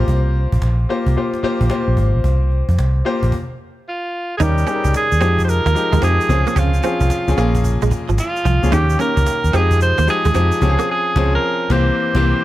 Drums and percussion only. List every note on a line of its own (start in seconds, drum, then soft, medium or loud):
0.08 cajon bass loud
0.26 cajon slap soft
0.35 cajon slap soft
0.52 cajon bass loud
0.62 cajon slap loud
0.79 cajon slap soft
0.89 cajon slap soft
1.06 cajon bass medium
1.16 cajon slap soft
1.34 cajon slap medium
1.43 cajon slap soft
1.61 cajon bass loud
1.70 cajon slap loud
1.88 cajon slap soft
1.97 cajon bass medium
2.15 cajon slap soft
2.24 cajon bass loud
2.42 cajon slap soft
2.51 cajon slap soft
2.69 cajon bass medium
2.79 cajon slap loud
2.96 cajon slap soft
3.23 cajon bass loud
3.32 cajon bass medium
3.32 cajon slap medium
4.40 cajon bass medium
4.40 shaker medium
4.58 shaker soft
4.67 shaker soft
4.85 cajon bass medium
4.85 shaker medium
4.94 cajon slap loud
4.94 shaker medium
5.11 cajon slap soft
5.11 shaker medium
5.21 shaker soft
5.39 cajon bass medium
5.39 shaker soft
5.48 cajon slap soft
5.48 shaker medium
5.66 cajon slap medium
5.66 shaker soft
5.76 shaker soft
5.93 cajon bass loud
5.93 shaker soft
6.02 cajon slap loud
6.02 shaker medium
6.21 shaker soft
6.29 cajon bass medium
6.29 shaker soft
6.47 cajon slap soft
6.47 shaker soft
6.56 cajon bass loud
6.56 shaker medium
6.74 cajon slap soft
6.74 shaker soft
6.83 shaker medium
7.01 cajon bass loud
7.01 shaker medium
7.10 cajon slap loud
7.10 shaker medium
7.28 shaker medium
7.37 shaker soft
7.55 cajon bass loud
7.55 shaker soft
7.64 cajon bass medium
7.64 shaker medium
7.82 cajon slap medium
7.82 shaker medium
7.91 cajon bass loud
7.91 shaker soft
8.09 cajon slap soft
8.09 shaker soft
8.18 cajon slap loud
8.18 shaker medium
8.36 cajon slap soft
8.36 shaker soft
8.45 cajon bass medium
8.45 shaker soft
8.63 cajon slap soft
8.63 shaker medium
8.72 cajon bass loud
8.72 shaker medium
8.90 cajon slap soft
8.90 shaker medium
9.00 shaker soft
9.17 cajon bass loud
9.17 shaker medium
9.26 cajon slap loud
9.26 shaker medium
9.44 cajon slap soft
9.44 shaker medium
9.54 shaker medium
9.71 cajon bass loud
9.71 shaker soft
9.81 cajon slap soft
9.81 shaker medium
9.98 cajon slap medium
9.98 shaker medium
10.08 shaker soft
10.25 cajon bass loud
10.25 shaker soft
10.35 cajon slap loud
10.35 shaker medium
10.52 cajon slap soft
10.52 shaker soft
10.61 cajon bass medium
10.61 shaker soft
10.79 shaker soft
11.16 cajon bass loud
11.16 cajon slap loud
11.70 cajon bass loud
11.70 cajon slap loud
12.15 cajon bass loud
12.15 cajon slap loud